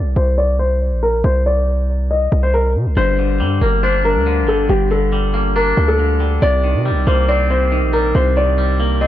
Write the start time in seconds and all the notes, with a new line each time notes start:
Already playing: D5
0.00 C2
0.16 C2 C5
0.38 D5
0.59 C5
0.92 A#1
1.03 A#4
1.24 C2 C5
1.46 D5
2.11 D#5
2.32 C2
2.43 C5
2.54 A#4
2.75 C3
2.86 C2
2.97 G1 G2 C5
3.19 D3
3.40 G2 G3
3.61 G1 A#3 A#4
3.83 D4 C5
4.05 G2 A#4
4.16 D2
4.26 D3
4.42 G1
4.48 G3 A4
4.69 G1 G2 G4
4.91 D3 A4
5.12 G3
5.34 A#3
5.56 D4 A#4
5.77 D2 G2
5.88 A4
5.99 D3
6.20 G3
6.42 C2 C3 D5
6.64 D#3
6.75 C3
6.85 G3
6.91 C2
7.07 C2 A#3 C5
7.29 C4 D5
7.50 C3 C5
7.72 D#3
7.83 A#1
7.93 G3 A#4
8.15 C2 C3 C5
8.37 D#3 D5
8.58 G3
8.80 A#3
9.01 C4 D#5